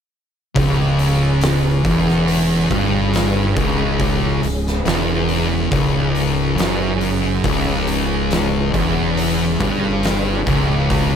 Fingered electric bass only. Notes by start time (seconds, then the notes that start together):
0.56 C#1
1.85 E1
2.70 G1
3.57 C#1
4.42 C#1
4.85 E1
5.72 C#1
6.58 F#1
7.44 C#1
8.74 E1
9.60 G1
10.47 C#1